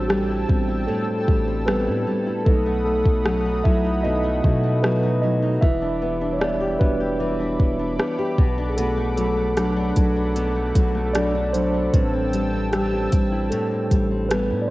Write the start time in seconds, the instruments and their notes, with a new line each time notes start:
Already playing: 808-style bass A1, nylon-string guitar A2 C4, tine electric piano D4 C5, analog synth pad A4 G5 A5 E6
0.01 tine electric piano F#4
0.08 nylon-string guitar G3, tine electric piano G3 G4, cross-stick
0.29 nylon-string guitar E4
0.49 808-style bass A1, tine electric piano G3 B3 C4, nylon-string guitar G3, kick
0.68 nylon-string guitar E4
0.87 nylon-string guitar A2, tine electric piano A3 A4
1.08 nylon-string guitar C4
1.28 808-style bass A1, nylon-string guitar G3, kick
1.48 nylon-string guitar C4
1.66 nylon-string guitar G3, tine electric piano B3 B4, cross-stick
1.87 808-style bass A2, nylon-string guitar E4
2.07 nylon-string guitar G3
2.26 nylon-string guitar E4
2.45 808-style bass B1, nylon-string guitar B2, tine electric piano F#3 A3 D#4 A4, analog synth pad F#5 B5 D#6, kick
2.66 nylon-string guitar A3
2.85 nylon-string guitar F#3, tine electric piano A3 A4
3.05 808-style bass B1, nylon-string guitar A3, kick
3.25 nylon-string guitar F#3, cross-stick
3.45 nylon-string guitar D#4
3.64 808-style bass B1, nylon-string guitar F#3, tine electric piano E4 E5, kick
3.85 nylon-string guitar D#4
4.03 nylon-string guitar B2, tine electric piano D#4 D#5
4.24 nylon-string guitar A3
4.44 808-style bass B2, nylon-string guitar F#3, kick
4.63 nylon-string guitar A3
4.82 nylon-string guitar F#3, tine electric piano B3 B4, cross-stick
5.03 nylon-string guitar D#4
5.22 nylon-string guitar F#3, tine electric piano D#4 D#5
5.42 nylon-string guitar D#4
5.61 808-style bass E1, nylon-string guitar E3, analog synth pad G3 E5 B5 D6, tine electric piano E4 E5, kick
5.82 nylon-string guitar D4
6.02 nylon-string guitar B3
6.21 nylon-string guitar D4
6.33 tine electric piano C#5
6.40 nylon-string guitar B3, tine electric piano D4 D5, cross-stick
6.61 nylon-string guitar G4
6.80 808-style bass E1, tine electric piano G3 B3 D4 F#4 B4, nylon-string guitar B3, kick
7.00 nylon-string guitar G4
7.20 nylon-string guitar E3
7.40 nylon-string guitar D4
7.60 808-style bass E1, nylon-string guitar B3, kick
7.79 nylon-string guitar D4
7.99 nylon-string guitar B3, cross-stick
8.19 nylon-string guitar G4
8.38 808-style bass B1, nylon-string guitar B2, analog synth pad A4 F#5, kick
8.58 nylon-string guitar D4
8.70 tine electric piano G#4
8.77 nylon-string guitar B2, tine electric piano A3 A4, closed hi-hat
8.98 nylon-string guitar A3
9.16 nylon-string guitar F#3, tine electric piano A3 A4, closed hi-hat
9.37 nylon-string guitar A3
9.56 tine electric piano F#3 A3 D4, nylon-string guitar F#3, cross-stick, closed hi-hat
9.76 nylon-string guitar D4
9.96 808-style bass B1, nylon-string guitar F#3, kick, closed hi-hat
10.16 nylon-string guitar D4
10.36 nylon-string guitar B2, closed hi-hat
10.55 nylon-string guitar A3
10.75 808-style bass B1, nylon-string guitar F#3, kick, closed hi-hat
10.95 nylon-string guitar A3
11.13 nylon-string guitar F#3, tine electric piano D4 D5, cross-stick, closed hi-hat
11.34 nylon-string guitar D4
11.53 nylon-string guitar F#3, tine electric piano D4 C5, closed hi-hat
11.74 nylon-string guitar D4
11.93 808-style bass A1, nylon-string guitar A2, tine electric piano G3 C4 B4, analog synth pad G5 A5 E6, kick, closed hi-hat
12.13 nylon-string guitar C4
12.33 nylon-string guitar G3, closed hi-hat
12.53 nylon-string guitar C4
12.71 nylon-string guitar G3, tine electric piano G3 G4, cross-stick, closed hi-hat
12.92 nylon-string guitar E4
13.12 808-style bass A1, nylon-string guitar G3, kick, closed hi-hat
13.32 nylon-string guitar E4
13.50 nylon-string guitar A2, tine electric piano A3 A4, closed hi-hat
13.71 nylon-string guitar C4
13.91 808-style bass A1, nylon-string guitar G3, kick, closed hi-hat
14.11 nylon-string guitar C4
14.29 nylon-string guitar G3, tine electric piano B3 B4, cross-stick, closed hi-hat
14.50 808-style bass A2, nylon-string guitar E4
14.62 tine electric piano D5